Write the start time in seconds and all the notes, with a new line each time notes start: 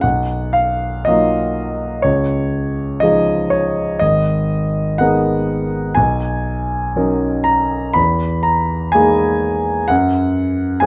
0.01 B1 F#5
0.53 F5
1.05 F#3 A#3 D#4 F4 D#5
2.02 C#2 C#5
3.00 F3 G#3 D#4 G#4 D#5
3.50 C#5
3.99 G#1 D#5
4.98 G#3 B3 D#4 A#4 F#5
5.95 B1 G#5
6.96 F#3 C#4 D#4 A#4
7.44 A#5
7.93 E2 B5
8.43 A#5
8.92 G#3 A#3 D#4 G#4 G#5
9.88 F#2 F#5
10.80 G#3 A#3 C#4 G#4 G#5